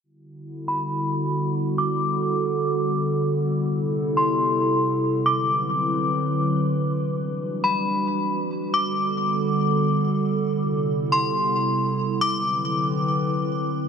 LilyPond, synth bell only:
\new Staff \with { instrumentName = "Synth bell" } { \time 4/4 \key g \major \tempo 4 = 138 r4. b''4. r4 | d'''2. r4 | r4. c'''4. r4 | d'''2. r4 |
r4. b''4. r4 | d'''2. r4 | r4. c'''4. r4 | d'''2. r4 | }